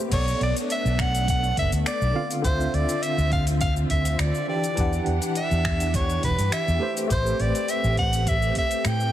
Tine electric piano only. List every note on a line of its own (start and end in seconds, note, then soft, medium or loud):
0.00 0.14 A3 medium
0.00 0.13 G4 medium
0.00 0.13 B4 medium
0.00 0.13 C5 loud
0.09 2.11 B3 medium
0.09 2.12 A4 medium
0.09 2.12 C#5 medium
0.14 2.13 D5 medium
2.13 2.40 D3 medium
2.13 2.41 C4 medium
2.13 2.41 F4 medium
2.13 2.42 F5 medium
2.42 4.44 D3 medium
2.42 4.45 C4 medium
2.42 4.46 F4 medium
2.47 4.46 E5 loud
4.47 4.74 E3 medium
4.47 4.74 D4 medium
4.47 4.75 G4 medium
4.47 4.75 G5 medium
4.75 6.77 E3 medium
4.75 6.78 D4 medium
4.75 6.79 G4 medium
4.80 6.80 F#5 medium
6.80 7.06 A3 medium
6.80 7.07 G4 medium
6.80 7.07 B4 medium
6.80 7.08 C5 medium
7.07 9.09 A3 medium
7.07 9.10 G4 medium
7.07 9.11 B4 medium
7.13 9.12 C5 loud